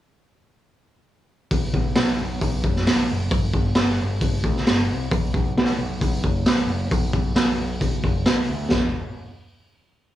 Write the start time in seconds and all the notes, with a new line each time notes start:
1.51 B1, kick, open hi-hat
1.73 B1, kick
1.95 B1, snare, open hi-hat
2.07 snare
2.21 B1
2.41 B1, kick, open hi-hat
2.64 F#1, kick
2.76 snare
2.87 B1, snare, open hi-hat
3.11 F#1
3.31 G1, kick, open hi-hat
3.53 G1, kick
3.75 G1, snare, open hi-hat
3.89 snare
4.02 G1
4.21 G1, kick, open hi-hat
4.44 D2, kick
4.57 snare
4.67 G1, snare, open hi-hat
4.91 C2
5.11 B1, kick, open hi-hat
5.33 B1, kick
5.57 B1, snare, open hi-hat
5.69 snare
5.79 B1
6.01 B1, kick, open hi-hat
6.23 F#1, kick
6.45 B1, snare, open hi-hat
6.66 F#1
6.91 B1, kick, open hi-hat
7.13 B1, kick
7.34 B1, snare, open hi-hat
7.59 B1
7.80 B1, kick, open hi-hat
8.03 F#1, kick
8.26 B1, snare, open hi-hat
8.49 D2
8.71 E1, kick, snare